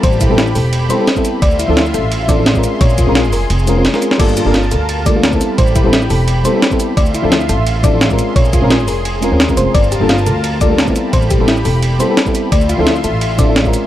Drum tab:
CC |----------------|----------------|----------------|x---------------|
RD |b---b---b---b---|b---b---b---b---|b---b---b---b---|b---b---b---b---|
HH |x-x-x-o-x-x-x-x-|x-x-x-x-x-x-x-x-|x-x-x-o-x-x-x-x-|x-x-x-x-x-x-x-x-|
SH |-xx--xx---x--xx-|-xx--xx---x--xx-|-xx--xx--xx--xx-|-xx--xx---x--xx-|
SD |----o-------o---|----o-------o---|----o-------oo-o|----o-------o---|
BD |o-o----------o--|o---------o--o--|o-o-------------|o---------o--o--|

CC |----------------|----------------|----------------|----------------|
RD |b---b---b---b---|b---b---b---b---|b---b---b---b---|b---b---b---b---|
HH |x-x-x-o-x-x-x-x-|x-x-x-x-x-x-x-x-|x-x-x-o-x-x-x-x-|x-x-x-x-x-x-x-x-|
SH |-xx--xx---x--xx-|-xx--xx---x--xx-|-xx--xx---x--xx-|-xx--xx---x--xx-|
SD |----o-------o---|----o-------o---|----o-------o---|----o-------o---|
BD |o-o----------o--|o---------o--o--|o-o----------o--|o---------o--o--|

CC |----------------|----------------|
RD |b---b---b---b---|b---b---b---b---|
HH |x-x-x-o-x-x-x-x-|x-x-x-x-x-x-x-x-|
SH |-xx--xx---x--xx-|-xx--xx---x--xx-|
SD |----o-------o---|----o-------o---|
BD |o-o----------o--|o---------o--o--|